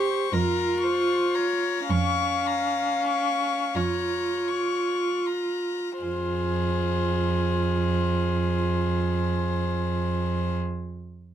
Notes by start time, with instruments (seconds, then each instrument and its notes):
Already playing: cello F2, viola G4, violin C5 C#6
0.32 cello F2, viola F4, violin A#4 A#5
0.81 violin C5 C#6
1.34 violin C#5 A#5
1.87 cello F2, viola C#4, violin F5 C#6
2.47 violin A#5
3.09 violin C#6
3.75 cello F2, viola F4, violin C#5 A#5
4.48 violin C#6
5.26 violin A#5
6.01 cello F2, viola F4, violin G#4 C5